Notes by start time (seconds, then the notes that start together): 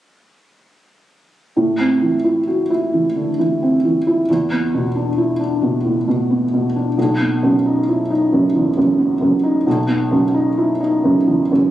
1.57 A2
1.80 C4
2.02 E3
2.24 E4
2.47 F#4
2.70 E4
2.93 E3
3.15 D3
3.39 E3
3.63 C4
3.84 E3
4.07 E4
4.30 E2
4.52 B3
4.74 B2
4.95 D4
5.18 E4
5.39 D4
5.62 B2
5.84 A2
6.08 B2
6.31 B3
6.53 B2
6.76 D4
6.98 B1
7.20 B3
7.43 F#2
7.66 D#4
7.89 E4
8.10 D#4
8.32 F#2
8.55 E2
8.77 F#2
8.98 B3
9.21 F#2
9.43 D#4
9.66 B1
9.88 B3
10.11 F#2
10.34 D#4
10.58 E4
10.80 D#4
11.04 F#2
11.27 E2
11.51 F#2